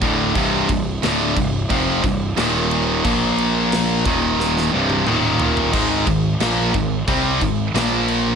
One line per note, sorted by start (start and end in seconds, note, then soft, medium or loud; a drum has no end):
0.01 0.33 D1 loud
0.01 0.35 D2 loud
0.01 0.35 A2 loud
0.01 0.35 D3 loud
0.01 kick loud
0.01 crash medium
0.35 0.67 C1 loud
0.35 0.68 C2 medium
0.35 0.69 G2 loud
0.35 0.69 C3 loud
0.35 kick loud
0.35 crash medium
0.69 1.00 C1 medium
0.69 0.96 C2 medium
0.69 0.97 G2 medium
0.69 kick loud
0.69 crash medium
1.03 1.35 D1 loud
1.03 1.36 D2 loud
1.03 1.36 A2 loud
1.03 1.36 D3 loud
1.03 snare loud
1.03 crash medium
1.37 1.68 C1 medium
1.37 1.64 C2 medium
1.37 1.64 G2 medium
1.37 kick loud
1.37 crash medium
1.70 2.02 F1 loud
1.70 2.03 F2 loud
1.70 2.03 C3 loud
1.70 2.03 F3 loud
1.70 kick loud
1.70 crash medium
2.04 2.35 C1 medium
2.04 2.31 C2 medium
2.04 2.31 G2 medium
2.04 kick loud
2.04 crash medium
2.37 3.00 D#1 loud
2.37 3.03 D#2 medium
2.37 3.03 A#2 medium
2.37 3.04 D#3 loud
2.37 snare loud
2.37 crash medium
2.71 crash medium
3.05 4.01 A#1 medium
3.05 4.04 A#2 loud
3.05 4.05 F3 medium
3.05 4.05 A#3 loud
3.05 kick loud
3.05 crash medium
3.38 crash medium
3.72 snare loud
3.72 crash medium
4.06 4.69 D#1 loud
4.06 4.72 D#2 medium
4.06 4.72 A#2 loud
4.06 4.72 D#3 medium
4.06 kick loud
4.06 crash medium
4.40 snare medium
4.57 snare medium
4.73 5.04 C1 loud
4.73 5.07 C2 medium
4.73 5.07 G2 medium
4.73 5.07 C3 medium
4.90 high tom medium
5.07 5.70 D#1 medium
5.07 5.73 D#2 medium
5.07 5.73 A#2 loud
5.07 5.73 D#3 loud
5.07 mid tom medium
5.40 floor tom loud
5.57 floor tom loud
5.73 6.05 G#1 medium
5.73 6.06 G#2 medium
5.73 6.06 D#3 medium
5.73 6.06 G#3 loud
5.73 kick loud
5.73 crash medium
6.07 6.38 G#1 medium
6.07 6.34 G#2 medium
6.07 6.34 D#3 medium
6.07 kick loud
6.07 crash medium
6.40 6.72 A#1 medium
6.40 6.73 A#2 medium
6.40 6.73 F3 medium
6.40 6.73 A#3 loud
6.40 snare loud
6.40 crash medium
6.74 7.05 G#1 medium
6.74 7.01 G#2 medium
6.74 7.01 D#3 medium
6.74 kick medium
6.74 crash medium
7.08 7.39 C2 loud
7.08 7.40 C3 loud
7.08 7.41 G3 loud
7.08 7.41 C4 loud
7.08 kick loud
7.08 crash medium
7.41 7.73 G#1 medium
7.41 7.68 G#2 medium
7.41 7.68 D#3 medium
7.41 kick medium
7.41 crash medium
7.74 8.35 A#1 loud
7.74 8.35 A#2 medium
7.74 8.35 F3 loud
7.74 8.35 A#3 loud
7.74 snare loud
7.74 crash medium
8.08 crash medium